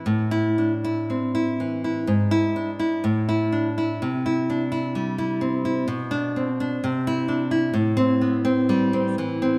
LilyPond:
\new Staff \with { instrumentName = "Nylon-string guitar" } { \time 2/4 \key a \minor \tempo 4 = 62 << { r16 e'8 r4 r16 | r16 e'8 r8 e'8 r16 | r16 e'8 r4 r16 | r16 d'8 r8 e'8 r16 |
r16 c'8 r4 r16 | } \\ { a,8 d'16 e'16 c'16 e'16 e16 e'16 | gis,8 d'16 e'16 a,8 d'16 e'16 | c8 d'16 e'16 g16 e'16 c'16 e'16 | b,8 c'16 d'16 c8 d'16 e'16 |
a,8 b16 c'16 g16 c'16 e16 c'16 | } >> }